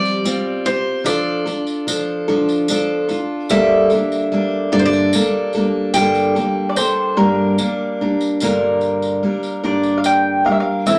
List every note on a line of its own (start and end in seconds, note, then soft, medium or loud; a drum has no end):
0.00 0.25 F3 medium
0.00 0.23 G3 medium
0.00 0.24 C4 medium
0.00 0.25 F4 medium
0.00 0.24 G4 medium
0.00 0.69 D5 medium
0.05 tambourine soft
0.24 0.65 G3 medium
0.24 0.66 C4 medium
0.24 0.65 F4 medium
0.24 0.64 G4 medium
0.24 tambourine medium
0.65 1.04 C4 soft
0.65 1.04 F4 soft
0.65 1.06 G4 medium
0.65 1.07 C5 medium
0.65 tambourine soft
1.04 1.46 F3 medium
1.04 1.46 D4 medium
1.04 1.46 F4 medium
1.04 1.44 A4 medium
1.04 1.93 D5 medium
1.04 tambourine medium
1.46 1.87 D4 soft
1.46 1.88 F4 medium
1.46 1.87 A4 medium
1.46 tambourine soft
1.67 tambourine soft
1.87 2.28 F3 medium
1.87 2.28 D4 medium
1.87 2.27 F4 medium
1.87 2.27 A4 medium
1.87 tambourine medium
2.28 2.67 F3 medium
2.28 2.68 D4 medium
2.28 2.69 F4 medium
2.28 2.69 A4 medium
2.49 tambourine soft
2.68 3.09 F3 medium
2.68 3.10 D4 medium
2.68 3.09 F4 medium
2.68 3.07 A4 medium
2.68 tambourine medium
3.09 3.49 D4 soft
3.09 3.50 F4 medium
3.09 3.50 A4 medium
3.09 tambourine soft
3.49 3.91 G2 medium
3.49 3.91 D3 medium
3.49 3.91 G3 medium
3.49 3.91 A#3 medium
3.49 3.91 D4 medium
3.49 3.90 A4 medium
3.49 4.72 E5 medium
3.49 tambourine medium
3.90 4.31 G3 soft
3.90 4.31 A#3 soft
3.90 4.32 D4 medium
3.90 4.32 A4 medium
3.90 tambourine soft
4.12 tambourine soft
4.32 4.72 G3 medium
4.32 4.72 A#3 medium
4.32 4.71 D4 medium
4.32 4.71 A4 medium
4.72 5.14 G2 medium
4.72 5.14 D3 medium
4.72 5.12 G3 medium
4.72 5.13 A#3 medium
4.72 5.13 D4 medium
4.72 5.13 A4 medium
4.72 4.80 D5 medium
4.79 4.86 C5 medium
4.86 5.93 D5 medium
4.93 tambourine soft
5.13 5.54 G3 medium
5.13 5.55 A#3 medium
5.13 5.54 D4 medium
5.13 5.53 A4 medium
5.13 tambourine medium
5.53 5.95 D4 medium
5.53 5.95 A4 medium
5.53 tambourine soft
5.57 5.94 G3 soft
5.57 5.95 A#3 medium
5.94 6.36 G2 medium
5.94 6.36 D3 medium
5.94 6.36 G3 medium
5.94 6.36 A#3 medium
5.94 6.35 D4 medium
5.94 6.34 A4 medium
5.94 7.95 G5 medium
5.94 tambourine medium
6.15 tambourine soft
6.35 6.75 G3 soft
6.35 6.76 A#3 soft
6.35 6.77 D4 soft
6.35 6.76 A4 medium
6.35 tambourine soft
6.69 6.76 D5 medium
6.76 7.16 G3 medium
6.76 7.16 A#3 medium
6.76 7.15 D4 medium
6.76 7.18 A4 medium
6.76 7.17 C5 loud
6.76 tambourine medium
7.17 7.59 G2 medium
7.17 7.58 D3 medium
7.17 7.57 G3 medium
7.17 7.58 A#3 medium
7.17 7.58 D4 medium
7.17 8.36 A#4 medium
7.58 7.99 G3 medium
7.58 8.00 A#3 medium
7.58 8.00 D4 medium
7.58 tambourine medium
8.01 8.41 G3 soft
8.01 8.42 A#3 soft
8.01 8.41 D4 medium
8.21 tambourine soft
8.40 9.23 G2 medium
8.40 9.23 D3 medium
8.40 9.22 G3 medium
8.40 9.22 A#3 medium
8.40 9.23 D4 medium
8.40 9.24 A#4 medium
8.40 tambourine medium
8.81 tambourine soft
9.02 tambourine soft
9.23 9.63 G3 soft
9.23 9.63 A#3 soft
9.23 9.63 D4 medium
9.23 9.62 A#4 medium
9.43 tambourine soft
9.63 10.46 G2 medium
9.63 10.46 D3 soft
9.63 10.46 G3 medium
9.63 10.45 A#3 medium
9.63 10.45 D4 medium
9.63 10.43 A#4 medium
9.63 9.99 D5 medium
9.83 tambourine soft
9.98 10.04 F5 medium
10.04 10.45 G5 medium
10.04 tambourine medium
10.45 10.86 G3 soft
10.45 10.87 A#3 soft
10.45 10.86 D4 soft
10.45 10.86 A#4 soft
10.45 10.51 F5 medium
10.52 10.59 E5 medium
10.60 10.85 F5 medium
10.86 10.99 A2 medium
10.86 10.99 E3 medium
10.86 10.99 A3 medium
10.86 10.99 C4 medium
10.86 10.99 E4 medium
10.86 10.99 A4 medium
10.86 10.99 E5 medium
10.86 tambourine medium